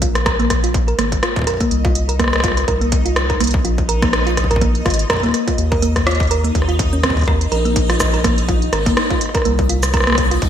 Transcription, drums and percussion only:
0.02 kick loud
0.02 closed hi-hat medium
0.15 cross-stick medium
0.15 closed hi-hat soft
0.26 kick loud
0.26 cross-stick loud
0.26 closed hi-hat medium
0.40 closed hi-hat soft
0.50 kick loud
0.50 cross-stick medium
0.50 closed hi-hat medium
0.64 closed hi-hat medium
0.74 kick loud
0.74 closed hi-hat medium
0.88 closed hi-hat soft
0.99 cross-stick medium
0.99 closed hi-hat medium
1.12 kick loud
1.12 closed hi-hat medium
1.23 cross-stick loud
1.23 closed hi-hat medium
1.36 kick loud
1.36 closed hi-hat soft
1.39 kick medium
1.42 kick medium
1.44 kick medium
1.47 kick soft
1.47 cross-stick medium
1.47 closed hi-hat medium
1.50 kick soft
1.54 kick soft
1.57 kick soft
1.61 kick loud
1.61 closed hi-hat medium
1.71 closed hi-hat soft
1.85 kick loud
1.85 closed hi-hat soft
1.95 closed hi-hat medium
2.09 closed hi-hat medium
2.20 kick loud
2.20 cross-stick medium
2.20 closed hi-hat medium
2.24 cross-stick medium
2.28 cross-stick medium
2.33 cross-stick medium
2.33 closed hi-hat soft
2.36 cross-stick medium
2.40 kick loud
2.40 cross-stick loud
2.40 closed hi-hat medium
2.48 cross-stick medium
2.52 cross-stick soft
2.57 cross-stick soft
2.57 closed hi-hat medium
2.60 cross-stick soft
2.64 kick loud
2.64 cross-stick soft
2.64 closed hi-hat soft
2.81 closed hi-hat soft
2.92 kick loud
2.92 closed hi-hat medium
3.06 closed hi-hat medium
3.16 cross-stick loud
3.16 closed hi-hat medium
3.30 kick loud
3.30 closed hi-hat soft
3.40 cross-stick medium
3.40 closed hi-hat medium
3.44 closed hi-hat medium
3.47 closed hi-hat medium
3.51 kick loud
3.51 closed hi-hat soft
3.65 closed hi-hat medium
3.78 kick loud
3.78 closed hi-hat soft
3.89 closed hi-hat medium
4.02 kick loud
4.02 cross-stick medium
4.02 closed hi-hat medium
4.13 cross-stick loud
4.13 closed hi-hat medium
4.27 closed hi-hat soft
4.37 kick soft
4.37 cross-stick medium
4.37 closed hi-hat medium
4.44 kick medium
4.51 kick medium
4.51 closed hi-hat medium
4.56 kick medium
4.61 kick loud
4.61 closed hi-hat soft
4.75 closed hi-hat soft
4.86 kick loud
4.86 cross-stick medium
4.86 closed hi-hat soft
4.90 closed hi-hat medium
4.94 closed hi-hat medium
4.99 closed hi-hat medium
5.10 kick loud
5.10 cross-stick loud
5.10 closed hi-hat medium
5.13 kick medium
5.17 kick medium
5.20 kick medium
5.23 kick medium
5.23 closed hi-hat soft
5.26 kick soft
5.29 kick soft
5.31 kick soft
5.31 cross-stick soft
5.31 closed hi-hat medium
5.48 kick loud
5.48 closed hi-hat medium
5.58 closed hi-hat soft
5.72 kick loud
5.72 closed hi-hat soft
5.82 closed hi-hat medium
5.96 kick loud
5.96 cross-stick medium
5.96 closed hi-hat medium
6.07 cross-stick loud
6.07 closed hi-hat soft
6.11 closed hi-hat soft
6.15 closed hi-hat soft
6.20 kick loud
6.20 closed hi-hat soft
6.23 closed hi-hat soft
6.27 closed hi-hat soft
6.31 closed hi-hat medium
6.44 closed hi-hat soft
6.55 kick loud
6.55 closed hi-hat soft
6.62 cross-stick soft
6.69 closed hi-hat soft
6.79 kick loud
6.79 closed hi-hat medium
6.93 closed hi-hat soft
7.03 kick loud
7.03 cross-stick loud
7.03 closed hi-hat medium
7.10 kick medium
7.17 kick medium
7.17 closed hi-hat soft
7.19 closed hi-hat soft
7.21 kick medium
7.21 closed hi-hat soft
7.23 closed hi-hat soft
7.26 kick loud
7.26 cross-stick soft
7.26 closed hi-hat soft
7.41 closed hi-hat medium
7.52 closed hi-hat soft
7.65 closed hi-hat soft
7.76 kick loud
7.76 closed hi-hat medium
7.90 cross-stick medium
7.90 closed hi-hat soft
8.00 kick loud
8.00 cross-stick loud
8.00 closed hi-hat soft
8.00 shaker medium
8.14 closed hi-hat soft
8.24 kick loud
8.24 cross-stick medium
8.24 closed hi-hat medium
8.38 closed hi-hat soft
8.49 kick loud
8.49 closed hi-hat soft
8.62 closed hi-hat soft
8.73 cross-stick medium
8.73 closed hi-hat medium
8.86 kick loud
8.86 closed hi-hat medium
8.97 cross-stick loud
8.97 closed hi-hat soft
9.10 kick loud
9.10 closed hi-hat soft
9.21 cross-stick soft
9.21 closed hi-hat medium
9.26 cross-stick soft
9.29 cross-stick soft
9.35 kick loud
9.35 cross-stick soft
9.35 closed hi-hat soft
9.37 cross-stick soft
9.42 cross-stick soft
9.42 closed hi-hat soft
9.59 kick loud
9.59 closed hi-hat soft
9.69 closed hi-hat medium
9.83 cross-stick medium
9.83 closed hi-hat soft
9.83 shaker medium
9.94 kick loud
9.94 cross-stick soft
9.94 closed hi-hat soft
9.97 cross-stick medium
10.00 cross-stick medium
10.04 cross-stick medium
10.07 cross-stick medium
10.07 closed hi-hat soft
10.10 cross-stick medium
10.12 cross-stick medium
10.15 kick loud
10.15 cross-stick medium
10.15 closed hi-hat medium
10.31 closed hi-hat soft
10.42 kick loud
10.42 closed hi-hat soft

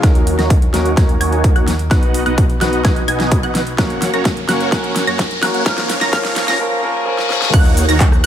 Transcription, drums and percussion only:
0.03 kick loud
0.03 snare soft
0.03 closed hi-hat medium
0.15 closed hi-hat soft
0.27 open hi-hat loud
0.39 snare soft
0.39 closed hi-hat soft
0.50 kick loud
0.50 closed hi-hat medium
0.62 closed hi-hat soft
0.74 snare soft
0.74 open hi-hat medium
0.86 closed hi-hat soft
0.97 kick loud
0.97 snare medium
0.97 closed hi-hat medium
1.09 closed hi-hat soft
1.21 open hi-hat loud
1.32 closed hi-hat soft
1.44 kick loud
1.44 closed hi-hat medium
1.56 closed hi-hat soft
1.68 snare medium
1.68 open hi-hat medium
1.79 closed hi-hat soft
1.91 kick loud
1.91 snare medium
1.91 closed hi-hat medium
2.03 closed hi-hat soft
2.14 open hi-hat loud
2.26 closed hi-hat soft
2.38 kick loud
2.38 closed hi-hat medium
2.50 closed hi-hat soft
2.61 snare medium
2.61 open hi-hat medium
2.73 closed hi-hat soft
2.85 kick loud
2.85 snare medium
2.85 closed hi-hat medium
2.96 closed hi-hat soft
3.08 open hi-hat loud
3.20 snare medium
3.20 closed hi-hat soft
3.32 kick loud
3.32 closed hi-hat medium
3.43 closed hi-hat soft
3.55 snare medium
3.55 open hi-hat medium
3.67 closed hi-hat soft
3.78 kick loud
3.78 snare medium
3.78 closed hi-hat medium
3.90 closed hi-hat soft
4.02 snare medium
4.02 open hi-hat loud
4.14 closed hi-hat soft
4.25 kick loud
4.25 snare medium
4.25 closed hi-hat medium
4.37 closed hi-hat soft
4.49 snare medium
4.49 open hi-hat loud
4.60 closed hi-hat soft
4.72 kick loud
4.72 snare medium
4.72 closed hi-hat medium
4.84 closed hi-hat soft
4.96 snare medium
4.96 open hi-hat loud
5.07 closed hi-hat soft
5.19 kick loud
5.19 snare medium
5.19 closed hi-hat medium
5.31 closed hi-hat soft
5.43 snare medium
5.43 open hi-hat medium
5.54 closed hi-hat soft
5.66 kick loud
5.66 snare loud
5.66 closed hi-hat medium
5.78 snare medium
5.78 closed hi-hat soft
5.90 snare medium
5.90 open hi-hat loud
6.01 snare medium
6.01 closed hi-hat soft
6.13 kick loud
6.13 snare medium
6.13 closed hi-hat medium
6.25 snare medium
6.25 closed hi-hat soft
6.36 snare loud
6.36 open hi-hat loud
6.48 snare medium
6.48 closed hi-hat soft
7.18 snare medium
7.30 snare medium
7.42 snare medium
7.54 kick loud
7.54 closed hi-hat medium
7.54 crash loud
7.54 cabasa soft
7.65 closed hi-hat soft
7.65 cabasa soft
7.77 open hi-hat loud
7.77 cabasa medium
7.89 closed hi-hat medium
7.89 cabasa soft
8.00 kick loud
8.00 clap loud
8.00 closed hi-hat medium
8.00 cabasa soft
8.12 cross-stick medium
8.12 cabasa soft

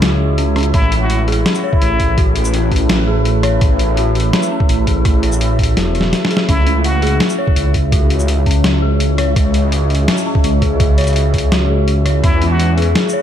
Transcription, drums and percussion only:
0.02 cross-stick soft
0.02 snare loud
0.02 closed hi-hat medium
0.38 closed hi-hat medium
0.56 cross-stick medium
0.56 closed hi-hat soft
0.58 closed hi-hat soft
0.61 closed hi-hat soft
0.63 closed hi-hat medium
0.74 kick loud
0.74 cross-stick soft
0.74 closed hi-hat medium
0.92 closed hi-hat medium
1.10 closed hi-hat medium
1.28 closed hi-hat soft
1.32 closed hi-hat medium
1.46 cross-stick soft
1.46 snare loud
1.46 closed hi-hat medium
1.55 shaker medium
1.73 kick loud
1.82 closed hi-hat medium
2.00 kick medium
2.00 closed hi-hat medium
2.18 kick loud
2.18 closed hi-hat medium
2.36 closed hi-hat medium
2.45 shaker medium
2.54 closed hi-hat medium
2.72 kick medium
2.72 closed hi-hat soft
2.76 closed hi-hat medium
2.89 cross-stick soft
2.89 snare loud
2.89 closed hi-hat medium
3.25 closed hi-hat medium
3.43 cross-stick medium
3.43 closed hi-hat medium
3.61 kick loud
3.61 cross-stick soft
3.61 closed hi-hat medium
3.79 closed hi-hat medium
3.97 closed hi-hat medium
4.15 closed hi-hat medium
4.20 closed hi-hat medium
4.33 cross-stick medium
4.33 snare loud
4.33 closed hi-hat medium
4.42 shaker medium
4.60 kick loud
4.69 closed hi-hat medium
4.87 kick medium
4.87 closed hi-hat medium
5.05 kick loud
5.05 cross-stick soft
5.05 closed hi-hat medium
5.23 closed hi-hat medium
5.32 shaker medium
5.41 closed hi-hat medium
5.59 kick medium
5.59 closed hi-hat soft
5.63 closed hi-hat medium
5.77 snare medium
5.77 closed hi-hat medium
5.95 closed hi-hat soft
6.01 snare medium
6.13 snare medium
6.13 closed hi-hat medium
6.25 snare loud
6.31 closed hi-hat medium
6.37 snare loud
6.49 kick loud
6.49 cross-stick soft
6.49 closed hi-hat medium
6.67 closed hi-hat medium
6.84 closed hi-hat medium
7.02 closed hi-hat medium
7.07 closed hi-hat medium
7.20 cross-stick medium
7.20 snare loud
7.20 closed hi-hat medium
7.29 shaker medium
7.47 kick loud
7.56 closed hi-hat medium
7.74 kick medium
7.74 closed hi-hat medium
7.92 kick loud
7.92 closed hi-hat medium
8.10 closed hi-hat medium
8.19 shaker medium
8.28 closed hi-hat medium
8.46 kick medium
8.46 closed hi-hat medium
8.51 closed hi-hat medium
8.64 cross-stick medium
8.64 snare loud
8.64 closed hi-hat medium
9.00 closed hi-hat medium
9.18 cross-stick medium
9.18 closed hi-hat medium
9.36 kick loud
9.36 cross-stick soft
9.36 closed hi-hat medium
9.54 closed hi-hat medium
9.72 closed hi-hat medium
9.90 closed hi-hat medium
9.95 closed hi-hat medium
10.08 cross-stick soft
10.08 snare loud
10.08 closed hi-hat medium
10.17 shaker medium
10.35 kick loud
10.44 closed hi-hat medium
10.62 kick medium
10.62 closed hi-hat medium
10.80 kick loud
10.80 closed hi-hat medium
10.98 closed hi-hat medium
11.01 closed hi-hat medium
11.04 closed hi-hat soft
11.07 closed hi-hat soft
11.07 shaker medium
11.10 closed hi-hat soft
11.13 closed hi-hat soft
11.16 closed hi-hat medium
11.34 kick medium
11.34 closed hi-hat medium
11.38 closed hi-hat medium
11.52 cross-stick medium
11.52 snare loud
11.52 closed hi-hat medium
11.88 closed hi-hat medium
12.06 cross-stick medium
12.06 closed hi-hat medium
12.24 kick loud
12.24 cross-stick soft
12.24 closed hi-hat medium
12.42 closed hi-hat medium
12.60 closed hi-hat medium
12.78 closed hi-hat soft
12.82 closed hi-hat medium
12.95 cross-stick soft
12.95 snare loud
12.95 closed hi-hat medium
13.09 shaker medium

